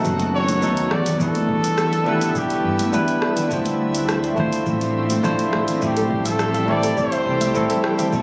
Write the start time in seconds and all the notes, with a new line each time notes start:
Already playing: D#3 F#3 A3 B3 D#4 F#4 A4, downlifter
0.05 F#1, kick, shaker
0.19 closed hi-hat, shaker
0.35 C#5
0.48 closed hi-hat, high conga, shaker
0.61 D#2 F#3 A3 B3 D#4 A4, shaker
0.77 closed hi-hat, shaker
0.91 E2 D3 E3 G3 D5 E5, cross-stick
1.06 closed hi-hat, low conga, shaker
1.17 E2 G3 B3 D4 A4, kick, shaker
1.21 E4 B4
1.35 closed hi-hat, high conga, shaker
1.49 kick
1.64 closed hi-hat, shaker
1.78 cross-stick, shaker
1.93 closed hi-hat, shaker
2.04 G3 B3 D4, high conga, low conga
2.08 E4 B4
2.21 closed hi-hat, shaker
2.35 G4, kick, shaker
2.50 closed hi-hat, shaker
2.64 G2
2.79 closed hi-hat, high conga, shaker
2.92 E2 G3 B3 D4 E4 B4, shaker
3.08 closed hi-hat, shaker
3.22 cross-stick
3.37 closed hi-hat, low conga, shaker
3.48 D2 F3 A3 C4 D4 E4 F4, kick, shaker
3.53 C5
3.65 closed hi-hat, high conga, shaker
3.95 closed hi-hat, shaker
4.09 cross-stick, shaker
4.24 closed hi-hat, shaker
4.35 A3 D4 E4 F4, kick, high conga, low conga
4.40 C5
4.53 closed hi-hat, shaker
4.66 A1, kick, shaker
4.81 closed hi-hat, shaker
5.10 closed hi-hat, high conga, shaker
5.23 A1 A3 D4 E4 F4 C5, shaker
5.39 closed hi-hat, shaker
5.53 A1, cross-stick
5.67 closed hi-hat, low conga, shaker
5.79 A1 E3 G3 A3 C4 G4, kick, shaker
5.83 E4 G4 A4
5.97 A4, closed hi-hat, high conga, shaker
6.11 kick
6.25 A4 E5, closed hi-hat, shaker
6.39 cross-stick, shaker
6.54 E5, closed hi-hat, shaker
6.65 G3 A3 C4 E4, high conga, low conga
6.70 A4 D5
6.83 A4, closed hi-hat, shaker
6.97 C5, kick, shaker
7.12 E5, closed hi-hat, shaker
7.26 C2
7.41 E5, closed hi-hat, high conga, shaker
7.54 A1 G3 A3 C4 E4 A4, shaker
7.70 A4, closed hi-hat, shaker
7.84 cross-stick
7.98 E5, closed hi-hat, low conga, shaker
8.10 B1 D#3 F#3 A3 B3 F#4, kick, shaker
8.14 D#4 A4